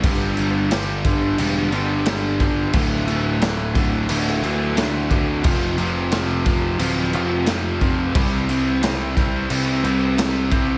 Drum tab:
CC |x-x-x-x-x-x-x-x-|x-x-x-x-x-x-x-x-|x-x-x-x-x-x-x-x-|x-x-x-x-x-x-x-x-|
SD |----o-------o---|----o----o--o---|----o-------o---|----o-------o---|
BD |o-----o-------o-|o-----o-------o-|o-----o-------o-|o-----o-------o-|